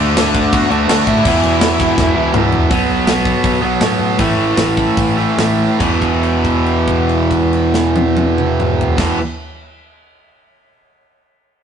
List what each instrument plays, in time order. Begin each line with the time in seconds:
Already playing: picked electric bass D2, distorted electric guitar D3 A3 D4
0.15 picked electric bass D2, lead electric guitar D4 D5, snare, crash
0.35 kick, crash
0.53 picked electric bass B2, lead electric guitar F#4 F#5, kick, crash
0.69 picked electric bass D2, distorted electric guitar D3 A3 D4, lead electric guitar F#4 F#5, crash
0.87 picked electric bass D2, distorted electric guitar D3 A3 D4, snare, crash
1.07 picked electric bass A2, lead electric guitar E4 E5, kick, crash
1.24 picked electric bass E1, distorted electric guitar E2 B2, kick, crash
1.28 distorted electric guitar E3
1.43 picked electric bass E1, crash
1.61 picked electric bass E1, snare, crash
1.80 kick, crash
1.98 picked electric bass E1, kick, snare
2.15 picked electric bass C#2, distorted electric guitar E2 B2 E3
2.33 picked electric bass C#2, distorted electric guitar E2 B2 E3, mid tom
2.52 picked electric bass E1, floor tom
2.69 picked electric bass B1, distorted electric guitar B2 F#3 B3, kick, open hi-hat
2.88 picked electric bass B1
3.07 picked electric bass B1, snare, open hi-hat
3.25 kick
3.44 picked electric bass B1, kick, open hi-hat
3.61 picked electric bass B1, distorted electric guitar B2 F#3 B3
3.80 picked electric bass A2, distorted electric guitar B2 F#3, snare, open hi-hat
3.85 distorted electric guitar B3
3.99 picked electric bass A2
4.18 picked electric bass A1, distorted electric guitar A2 E3, kick, open hi-hat
4.22 distorted electric guitar A3
4.38 picked electric bass A1
4.57 picked electric bass A1, snare, open hi-hat
4.77 kick
4.97 picked electric bass A1, kick, open hi-hat
5.17 distorted electric guitar E3 A3
5.21 distorted electric guitar A2
5.37 picked electric bass A1, distorted electric guitar A2 E3 A3, snare, open hi-hat
5.78 picked electric bass E1, distorted electric guitar E2 B2, kick, crash
5.82 distorted electric guitar E3
6.02 kick, crash
6.23 crash
6.45 kick, crash
6.66 crash
6.88 kick, crash
7.09 crash
7.31 kick, crash
7.53 crash
7.74 snare
7.96 high tom
8.17 high tom
8.38 mid tom
8.60 mid tom
8.81 floor tom
8.97 picked electric bass E1, distorted electric guitar E2 B2 E3, kick, snare, crash